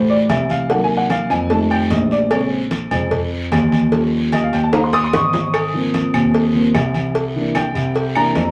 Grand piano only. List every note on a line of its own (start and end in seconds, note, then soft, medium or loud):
0.00 0.25 A2 medium
0.29 1.24 C2 medium
1.30 1.86 F2 medium
1.90 2.85 A#1 medium
2.91 3.48 F2 medium
3.51 4.47 D#2 loud
4.52 5.09 D#2 medium
5.13 6.08 G#1 medium
6.14 6.70 D#2 medium
6.74 7.69 C2 loud
7.75 8.31 C2 loud
8.35 8.51 F2 loud